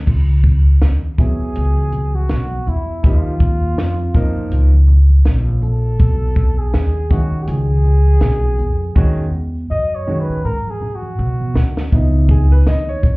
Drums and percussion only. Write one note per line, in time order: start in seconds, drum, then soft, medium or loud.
0.07 kick medium
0.07 crash medium
0.28 shaker soft
0.44 kick medium
0.44 shaker soft
0.65 shaker soft
0.82 snare loud
0.82 closed hi-hat medium
0.82 high conga soft
0.82 shaker soft
1.02 shaker soft
1.18 kick medium
1.18 closed hi-hat soft
1.18 low conga medium
1.18 shaker soft
1.40 shaker soft
1.55 closed hi-hat medium
1.77 high conga medium
1.77 shaker soft
1.92 closed hi-hat soft
1.92 low conga medium
1.92 shaker soft
2.14 high conga medium
2.14 shaker soft
2.29 snare medium
2.29 closed hi-hat medium
2.29 shaker medium
2.51 high conga medium
2.51 shaker soft
2.66 low conga medium
2.66 shaker soft
2.66 shaker medium
2.87 shaker soft
3.04 kick loud
3.04 closed hi-hat medium
3.26 shaker soft
3.40 kick medium
3.40 shaker soft
3.61 shaker soft
3.77 snare loud
3.77 closed hi-hat medium
3.77 high conga soft
3.77 shaker medium
3.98 shaker soft
4.15 kick medium
4.15 closed hi-hat soft
4.15 low conga medium
4.15 shaker soft
4.36 shaker soft
4.51 closed hi-hat medium
4.74 high conga medium
4.74 shaker soft
4.88 low conga medium
4.88 shaker soft
5.09 high conga medium
5.09 shaker soft
5.25 snare medium
5.25 closed hi-hat medium
5.25 shaker medium
5.48 high conga medium
5.48 shaker soft
5.62 low conga medium
5.62 shaker medium
5.83 shaker soft
5.99 kick loud
5.99 closed hi-hat medium
5.99 shaker medium
6.21 shaker soft
6.36 kick medium
6.36 shaker soft
6.57 shaker soft
6.74 snare loud
6.74 closed hi-hat medium
6.74 high conga soft
6.74 shaker medium
6.94 shaker soft
7.11 kick medium
7.11 closed hi-hat soft
7.11 low conga medium
7.11 shaker soft
7.32 shaker soft
7.47 closed hi-hat medium
7.70 high conga medium
7.70 shaker soft
7.84 low conga medium
7.84 shaker soft
8.06 high conga medium
8.06 shaker soft
8.21 snare loud
8.21 closed hi-hat medium
8.21 shaker medium
8.44 high conga medium
8.44 shaker soft
8.58 low conga medium
8.58 shaker soft
8.58 shaker medium
8.79 shaker soft
8.96 kick loud
9.17 shaker soft
9.33 shaker soft
9.54 shaker soft
9.71 high conga soft
9.71 shaker medium
9.91 shaker soft
10.08 low conga medium
10.08 shaker soft
10.30 shaker soft
10.44 shaker medium
10.67 high conga medium
10.67 shaker soft
10.81 low conga medium
10.81 shaker soft
11.02 high conga medium
11.02 shaker soft
11.18 shaker medium
11.40 high conga medium
11.40 shaker soft
11.54 snare loud
11.54 low conga medium
11.54 shaker soft
11.75 snare loud
11.75 shaker soft
11.92 kick medium
11.92 closed hi-hat medium
12.14 shaker soft
12.29 kick medium
12.29 shaker soft
12.50 shaker soft
12.66 snare loud
12.66 closed hi-hat medium
12.66 high conga soft
12.66 shaker medium
12.87 shaker soft
13.03 kick medium
13.03 closed hi-hat soft
13.03 low conga medium
13.03 shaker soft